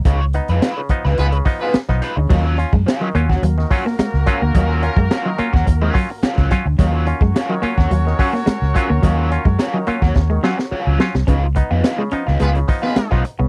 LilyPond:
<<
  \new Staff \with { instrumentName = "Horn section" } { \time 4/4 \key ees \minor \tempo 4 = 107 r2 <ces' f' aes' ces''>16 r8 <ces' f' aes' ces''>8 r8. | r2 <bes ges' bes'>2~ | <bes ges' bes'>2.~ <bes ges' bes'>8 r8 | <des' ges' bes' des''>1~ |
<des' ges' bes' des''>2.~ <des' ges' bes' des''>8 r8 | r2 <ces' f' aes' ces''>16 r8 <ces' f' aes' ces''>8. r8 | }
  \new Staff \with { instrumentName = "Overdriven electric guitar" } { \time 4/4 \key ees \minor <ees' f' des''>16 r8 <ees' f' ces''>16 <ees' f' ces''>16 r8 <ees' f' ces''>16 <ees' f' ces''>16 r8 <ees' f' ces''>16 r8 <ees' f' ces''>16 r16 | <ges des' f'>8 r8 <ges des' f'>16 r8 <ges des' ges'>16 r8 <ges des' ges'>16 r8. <ges des' f'>16 r16 | <ges des' f'>8 r8 <ges des' f'>16 r8 <ges des' ges'>16 r16 <ges des' f'>16 r8 <ges des' f'>8 r8 | <ges des' f'>8 r8 <ges des' f'>16 r8 <ges des' ges'>16 r8 <ges des' ges'>16 r8. <ges des' f'>16 r16 |
<ges des' f'>8 r8 <ges des' f'>16 r8 <ges des' ges'>16 r8 <ges des' ges'>16 r16 <ges des' f'>8 r8 | <ces' ees' f'>16 r8 <ces' ees' f'>16 <ces' ees' f'>16 r8 <ces' ees' f'>16 <ces' ees' f'>16 r8 <ces' ees' f'>16 r16 <ces' ees' f'>16 r8 | }
  \new Staff \with { instrumentName = "Clav" } { \time 4/4 \key ees \minor des16 r16 <ces' ees'>16 r16 <ces' ees'>16 des16 <f ces' ees'>16 r16 <ces' ees'>16 des16 <f ces' ees'>16 r8 <f ces' ees'>16 r16 des16 | ees16 r16 <des' f'>16 r16 <des' f'>16 ees16 <ges des' f'>16 r16 <des' f'>16 ees16 <ges des' f'>16 r8. <ges des' f'>16 r16 | ees16 r16 <des' f'>16 r16 <des' f'>16 ees16 <ges des' f'>16 r16 <des' f'>16 ees16 <ges des' f'>16 r8. <ges des' f'>16 r16 | ees16 r16 <des' f'>16 r16 <des' f'>16 ees16 <ges des' f'>16 r16 <des' f'>16 ees16 <ges des' f'>16 r8. <ges des' f'>16 r16 |
ees16 r16 <des' f'>16 r16 <des' f'>16 ees16 <ges des' f'>16 r16 <des' f'>16 ees16 <ges des' f'>16 r8. <ges des' f'>16 r16 | des16 r16 <ces' ees'>16 r16 <ces' ees'>16 des16 <f ces' ees'>16 r16 <ces' ees'>16 des16 <f ces' ees'>16 r8 <f ces' ees'>16 r16 des16 | }
  \new Staff \with { instrumentName = "Clean electric guitar" } { \clef bass \time 4/4 \key ees \minor r1 | ges16 r8 aes16 r16 ges16 bes16 r16 ges16 r8 bes16 aes16 r8 bes16 | ges16 r8 aes16 r16 ges16 bes16 r8 aes16 ges16 r8. ges16 r16 | ges16 r8 aes16 r16 ges16 bes16 r16 ges16 r8 bes16 aes16 r8 bes16 |
ges16 r8 aes16 r16 ges16 bes16 r8 aes16 ges16 r8. ges16 r16 | des'16 r8 ces'16 r16 aes16 des'16 r16 aes16 r8 ces'16 aes16 r8 ces'16 | }
  \new Staff \with { instrumentName = "Fingered electric bass" } { \clef bass \time 4/4 \key ees \minor des,8. f,16 r8. des,16 des,8 r8. ces,16 r16 d,16 | ees,8. ges,16 r8 ees,8 ees,8 r8. des,16 r16 d,16 | ees,8. ges,16 r8. ees,16 ees,8 r8. des,16 r16 d,16 | ees,8. ges,16 r8. ees,16 ees,8 r8. des,16 r16 d,16 |
ees,8. ges,16 r8. ees,16 ees,8 r8. des,16 r16 c,16 | des,8. f,16 r8. des,16 des,8 r8. ces,16 r16 c,16 | }
  \new DrumStaff \with { instrumentName = "Drums" } \drummode { \time 4/4 <hh bd>8 hh16 hh16 <hh sn>8 <hh bd>16 sn16 hh16 hh16 <hho bd>8 <hh sn>16 <bd sn>16 <hh sn>8 | <cymc bd>8 hh16 bd16 <hh sn>8 hh16 <bd sn>16 hh16 sn16 <hho bd>16 sn16 <hh sn>16 sn16 <hh bd>8 | <hh bd>8 hh16 bd16 <hh sn>8 hh16 <bd sn>16 <hh bd>8 <hho bd>8 <hh sn>16 <bd sn>16 <hh bd sn>8 | <hh bd>8 hh16 bd16 <hh sn>8 hh16 <bd sn>16 hh16 sn16 <hho bd>16 sn16 <hh sn>16 sn16 <hh bd>8 |
<hh bd>8 hh16 bd16 <hh sn>8 hh16 <bd sn>16 <bd sn>8 sn16 sn16 r8 sn16 sn16 | <hh bd>8 <hh bd>8 <hh sn>8 hh16 sn16 hh16 hh16 <hho bd>16 sn16 <hh sn>16 <bd sn>16 hh8 | }
>>